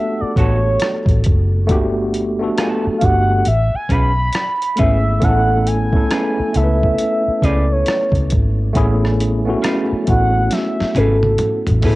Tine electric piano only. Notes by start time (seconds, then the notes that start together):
Already playing: A3 B3 D4 F#4 G4 A4
1.67 A3 B3 D4 F#4
1.72 G4
2.39 A3 B3 D4 F#4
2.44 A4
2.99 A3 B3 D4 F#4
3.04 G4
4.76 A3 B3 C#4 E4
4.81 G#4
5.20 A3 B3 C#4 E4
5.25 A4
5.92 A3 B3 C#4 E4
5.97 A4
6.52 A3 B3 C#4 E4
6.57 A4
6.63 B4
8.73 A3 B3 C#4 E4
8.77 G#4
9.45 A3 B3 C#4 E4
9.50 F#4
10.05 A3 B3 C#4 E4
10.10 F#4
11.82 A3 B3 C#4 E4
11.86 A4